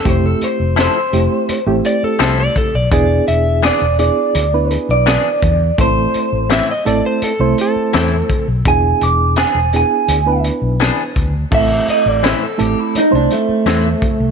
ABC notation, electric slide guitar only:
X:1
M:4/4
L:1/16
Q:1/4=84
K:Am
V:1 name="Electric slide guitar"
z8 z2 d A c d A d | d2 e2 z12 | z4 e ^d =d c A2 A4- A z | z16 |
z16 |]